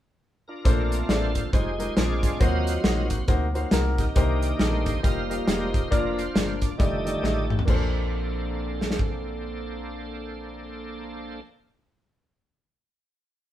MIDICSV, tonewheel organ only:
0, 0, Header, 1, 2, 480
1, 0, Start_track
1, 0, Key_signature, -2, "major"
1, 0, Tempo, 439239
1, 715, Time_signature, 4, 2, 24, 8
1, 14775, End_track
2, 0, Start_track
2, 0, Title_t, "Tonewheel organ"
2, 0, Program_c, 0, 16
2, 520, Note_on_c, 0, 70, 74
2, 530, Note_on_c, 0, 62, 53
2, 531, Note_on_c, 0, 65, 50
2, 705, Note_off_c, 0, 62, 0
2, 715, Note_on_c, 0, 57, 54
2, 717, Note_on_c, 0, 60, 47
2, 718, Note_on_c, 0, 62, 60
2, 1195, Note_off_c, 0, 65, 0
2, 1198, Note_on_c, 0, 72, 85
2, 1208, Note_on_c, 0, 65, 56
2, 1208, Note_on_c, 0, 69, 61
2, 1214, Note_off_c, 0, 70, 0
2, 1443, Note_off_c, 0, 57, 0
2, 1444, Note_off_c, 0, 60, 0
2, 1445, Note_off_c, 0, 62, 0
2, 1648, Note_off_c, 0, 65, 0
2, 1648, Note_off_c, 0, 69, 0
2, 1655, Note_off_c, 0, 72, 0
2, 1668, Note_on_c, 0, 72, 79
2, 1676, Note_on_c, 0, 67, 49
2, 1681, Note_on_c, 0, 56, 44
2, 1682, Note_on_c, 0, 68, 62
2, 1684, Note_on_c, 0, 63, 53
2, 2125, Note_off_c, 0, 68, 0
2, 2127, Note_off_c, 0, 63, 0
2, 2131, Note_off_c, 0, 67, 0
2, 2133, Note_off_c, 0, 56, 0
2, 2159, Note_on_c, 0, 56, 52
2, 2160, Note_on_c, 0, 74, 88
2, 2165, Note_off_c, 0, 72, 0
2, 2167, Note_on_c, 0, 68, 61
2, 2168, Note_on_c, 0, 60, 42
2, 2170, Note_on_c, 0, 65, 60
2, 2174, Note_on_c, 0, 62, 50
2, 2607, Note_off_c, 0, 68, 0
2, 2609, Note_off_c, 0, 65, 0
2, 2612, Note_off_c, 0, 56, 0
2, 2617, Note_off_c, 0, 60, 0
2, 2620, Note_off_c, 0, 62, 0
2, 2627, Note_on_c, 0, 54, 53
2, 2634, Note_on_c, 0, 75, 88
2, 2636, Note_on_c, 0, 60, 51
2, 2641, Note_on_c, 0, 66, 62
2, 2648, Note_on_c, 0, 65, 58
2, 2648, Note_on_c, 0, 72, 62
2, 2651, Note_off_c, 0, 74, 0
2, 3356, Note_off_c, 0, 75, 0
2, 3358, Note_off_c, 0, 54, 0
2, 3363, Note_off_c, 0, 60, 0
2, 3369, Note_off_c, 0, 65, 0
2, 3552, Note_off_c, 0, 66, 0
2, 3556, Note_off_c, 0, 72, 0
2, 3882, Note_on_c, 0, 54, 41
2, 3882, Note_on_c, 0, 60, 41
2, 3890, Note_on_c, 0, 65, 47
2, 4054, Note_off_c, 0, 54, 0
2, 4054, Note_off_c, 0, 60, 0
2, 4059, Note_off_c, 0, 65, 0
2, 4360, Note_on_c, 0, 67, 54
2, 4364, Note_on_c, 0, 63, 56
2, 4384, Note_on_c, 0, 70, 79
2, 4537, Note_on_c, 0, 51, 53
2, 4541, Note_on_c, 0, 62, 61
2, 4543, Note_on_c, 0, 58, 49
2, 5022, Note_off_c, 0, 67, 0
2, 5023, Note_off_c, 0, 63, 0
2, 5035, Note_on_c, 0, 67, 67
2, 5036, Note_on_c, 0, 63, 64
2, 5036, Note_on_c, 0, 72, 94
2, 5063, Note_off_c, 0, 70, 0
2, 5458, Note_off_c, 0, 51, 0
2, 5461, Note_off_c, 0, 62, 0
2, 5462, Note_off_c, 0, 58, 0
2, 5478, Note_off_c, 0, 67, 0
2, 5479, Note_off_c, 0, 63, 0
2, 5489, Note_off_c, 0, 72, 0
2, 5494, Note_on_c, 0, 55, 50
2, 5500, Note_on_c, 0, 58, 47
2, 5502, Note_on_c, 0, 72, 73
2, 5506, Note_on_c, 0, 63, 56
2, 5507, Note_on_c, 0, 70, 66
2, 5512, Note_on_c, 0, 77, 86
2, 5973, Note_off_c, 0, 72, 0
2, 5979, Note_off_c, 0, 63, 0
2, 5986, Note_on_c, 0, 72, 82
2, 5992, Note_on_c, 0, 63, 58
2, 5992, Note_on_c, 0, 67, 58
2, 6004, Note_off_c, 0, 77, 0
2, 6229, Note_off_c, 0, 55, 0
2, 6232, Note_off_c, 0, 58, 0
2, 6423, Note_off_c, 0, 70, 0
2, 6436, Note_off_c, 0, 63, 0
2, 6436, Note_off_c, 0, 67, 0
2, 6459, Note_on_c, 0, 53, 55
2, 6468, Note_on_c, 0, 58, 49
2, 6471, Note_on_c, 0, 70, 83
2, 6472, Note_on_c, 0, 62, 60
2, 6477, Note_on_c, 0, 65, 64
2, 6481, Note_off_c, 0, 72, 0
2, 6656, Note_on_c, 0, 71, 64
2, 6671, Note_off_c, 0, 70, 0
2, 6740, Note_off_c, 0, 65, 0
2, 6751, Note_off_c, 0, 71, 0
2, 6753, Note_on_c, 0, 65, 67
2, 6756, Note_on_c, 0, 72, 91
2, 6808, Note_off_c, 0, 53, 0
2, 6813, Note_off_c, 0, 58, 0
2, 7225, Note_on_c, 0, 74, 73
2, 7249, Note_off_c, 0, 72, 0
2, 7382, Note_off_c, 0, 65, 0
2, 7386, Note_off_c, 0, 62, 0
2, 7408, Note_on_c, 0, 51, 50
2, 7410, Note_on_c, 0, 55, 45
2, 7417, Note_on_c, 0, 50, 53
2, 7417, Note_on_c, 0, 57, 44
2, 7417, Note_on_c, 0, 75, 70
2, 7422, Note_on_c, 0, 69, 57
2, 7423, Note_on_c, 0, 67, 48
2, 7428, Note_off_c, 0, 74, 0
2, 8144, Note_off_c, 0, 75, 0
2, 8145, Note_off_c, 0, 51, 0
2, 8146, Note_off_c, 0, 55, 0
2, 8150, Note_off_c, 0, 50, 0
2, 8150, Note_off_c, 0, 57, 0
2, 8340, Note_off_c, 0, 67, 0
2, 8340, Note_off_c, 0, 69, 0
2, 8384, Note_on_c, 0, 58, 60
2, 8386, Note_on_c, 0, 62, 56
2, 8387, Note_on_c, 0, 69, 54
2, 8387, Note_on_c, 0, 72, 63
2, 12459, Note_off_c, 0, 58, 0
2, 12462, Note_off_c, 0, 62, 0
2, 12463, Note_off_c, 0, 69, 0
2, 12463, Note_off_c, 0, 72, 0
2, 14775, End_track
0, 0, End_of_file